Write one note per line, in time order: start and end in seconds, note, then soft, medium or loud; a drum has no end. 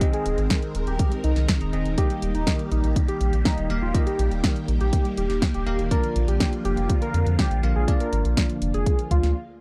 0.00 5.87 D#3 medium
0.00 1.94 G#3 medium
0.00 1.94 C4 medium
0.00 1.70 C4 medium
0.00 1.70 D#4 medium
0.00 1.70 G#4 medium
0.00 1.96 A#4 medium
0.00 1.70 D#5 medium
0.00 kick loud
0.00 closed hi-hat medium
0.13 0.38 G#4 medium
0.13 closed hi-hat soft
0.26 0.35 D#1 medium
0.26 closed hi-hat medium
0.38 0.48 G#1 medium
0.38 closed hi-hat soft
0.50 kick loud
0.50 snare loud
0.50 closed hi-hat medium
0.62 closed hi-hat soft
0.75 0.85 D#1 medium
0.75 closed hi-hat medium
0.87 0.97 D#1 medium
0.87 1.12 G4 medium
0.87 closed hi-hat soft
0.99 kick loud
0.99 closed hi-hat medium
1.12 closed hi-hat soft
1.24 1.34 C2 medium
1.24 1.49 D#4 medium
1.24 closed hi-hat medium
1.36 1.46 C2 medium
1.36 snare soft
1.36 closed hi-hat soft
1.48 kick loud
1.48 snare loud
1.48 closed hi-hat medium
1.61 1.71 D#1 medium
1.61 1.86 D#4 medium
1.61 closed hi-hat soft
1.73 1.83 D#1 medium
1.73 1.95 C4 medium
1.73 1.95 D#4 medium
1.73 1.95 G#4 medium
1.73 1.95 D#5 medium
1.73 closed hi-hat soft
1.85 1.95 D#1 medium
1.85 closed hi-hat soft
1.98 5.87 G3 medium
1.98 9.31 A#3 medium
1.98 3.67 A#3 medium
1.98 3.67 D#4 medium
1.98 3.67 G4 medium
1.98 5.87 G4 medium
1.98 2.23 G4 medium
1.98 3.67 D#5 medium
1.98 kick loud
1.98 closed hi-hat medium
2.10 closed hi-hat soft
2.22 2.32 D#1 medium
2.22 closed hi-hat medium
2.35 2.44 D#1 medium
2.35 2.60 D#4 loud
2.35 closed hi-hat soft
2.47 kick loud
2.47 snare loud
2.47 closed hi-hat medium
2.59 closed hi-hat soft
2.72 2.81 A#1 medium
2.72 2.96 D#4 loud
2.72 closed hi-hat medium
2.84 2.94 A#1 medium
2.84 closed hi-hat soft
2.96 kick loud
2.96 closed hi-hat medium
3.08 3.33 G4 medium
3.08 closed hi-hat soft
3.21 3.30 A#1 medium
3.21 closed hi-hat medium
3.33 3.43 A#1 medium
3.33 closed hi-hat soft
3.45 3.70 D#4 medium
3.45 kick loud
3.45 snare loud
3.45 closed hi-hat medium
3.58 3.67 D#1 medium
3.58 closed hi-hat soft
3.70 3.80 D#1 medium
3.70 3.92 A#3 medium
3.70 3.92 D#4 medium
3.70 3.92 G4 medium
3.70 3.92 F5 medium
3.70 closed hi-hat soft
3.82 3.92 D#1 medium
3.82 3.99 F4 medium
3.94 5.64 A#3 medium
3.94 5.64 D#4 medium
3.94 5.64 G4 medium
3.94 5.64 D#5 medium
3.94 kick loud
3.94 closed hi-hat medium
4.07 4.32 G4 medium
4.07 closed hi-hat soft
4.19 4.29 A#1 medium
4.19 closed hi-hat medium
4.31 4.41 D#1 medium
4.31 closed hi-hat soft
4.44 kick loud
4.44 snare loud
4.44 closed hi-hat medium
4.56 closed hi-hat soft
4.68 4.78 A#1 medium
4.68 closed hi-hat medium
4.81 4.90 A#1 medium
4.81 5.06 G4 medium
4.81 closed hi-hat soft
4.93 kick loud
4.93 closed hi-hat medium
5.05 closed hi-hat soft
5.17 5.27 D#1 medium
5.17 5.42 G4 medium
5.17 closed hi-hat medium
5.30 5.40 D#1 medium
5.30 snare soft
5.30 closed hi-hat soft
5.42 kick loud
5.42 snare loud
5.42 closed hi-hat medium
5.54 5.64 D#1 medium
5.54 5.79 G4 loud
5.54 closed hi-hat soft
5.67 5.76 D#1 medium
5.67 5.88 A#3 medium
5.67 5.88 D#4 medium
5.67 5.88 G4 medium
5.67 5.88 F5 medium
5.67 closed hi-hat soft
5.79 5.89 D#1 medium
5.79 closed hi-hat soft
5.91 9.32 D3 medium
5.91 9.32 F3 medium
5.91 7.60 A#3 medium
5.91 7.60 D4 medium
5.91 9.32 F4 medium
5.91 7.60 F4 medium
5.91 6.16 A#4 loud
5.91 7.60 D5 medium
5.91 kick loud
5.91 closed hi-hat medium
6.04 closed hi-hat soft
6.16 6.26 A#1 medium
6.16 closed hi-hat medium
6.28 6.38 A#1 medium
6.28 6.53 G4 loud
6.28 closed hi-hat soft
6.40 kick loud
6.40 snare loud
6.40 closed hi-hat medium
6.53 closed hi-hat soft
6.65 6.75 F1 medium
6.65 6.90 G4 loud
6.65 closed hi-hat medium
6.77 6.87 F1 medium
6.77 closed hi-hat soft
6.90 kick loud
6.90 closed hi-hat medium
7.02 7.27 A#4 medium
7.02 closed hi-hat soft
7.14 7.24 F2 medium
7.14 closed hi-hat medium
7.26 7.36 F2 medium
7.26 closed hi-hat soft
7.39 7.64 G4 loud
7.39 kick loud
7.39 snare loud
7.39 closed hi-hat medium
7.51 7.61 A#1 medium
7.51 closed hi-hat soft
7.63 7.73 A#1 loud
7.63 7.85 A#3 medium
7.63 7.85 D4 medium
7.63 7.85 F4 medium
7.63 7.85 F5 loud
7.63 closed hi-hat soft
7.76 7.85 A#1 medium
7.76 7.92 G#4 medium
7.88 9.36 A#3 medium
7.88 9.36 D4 medium
7.88 9.36 F4 medium
7.88 9.36 D5 medium
7.88 kick loud
7.88 closed hi-hat medium
8.00 8.25 A#4 loud
8.00 closed hi-hat soft
8.12 8.22 G#1 medium
8.12 closed hi-hat medium
8.25 8.35 A#1 medium
8.25 closed hi-hat soft
8.37 kick loud
8.37 snare loud
8.37 closed hi-hat medium
8.49 closed hi-hat soft
8.62 8.71 F1 medium
8.62 closed hi-hat medium
8.74 8.84 F1 medium
8.74 8.99 G#4 loud
8.74 closed hi-hat soft
8.86 kick loud
8.86 closed hi-hat medium
8.99 closed hi-hat soft
9.11 9.21 D2 medium
9.11 9.36 F4 medium
9.11 kick medium
9.11 closed hi-hat medium
9.23 9.33 D2 medium
9.23 snare soft
9.23 closed hi-hat soft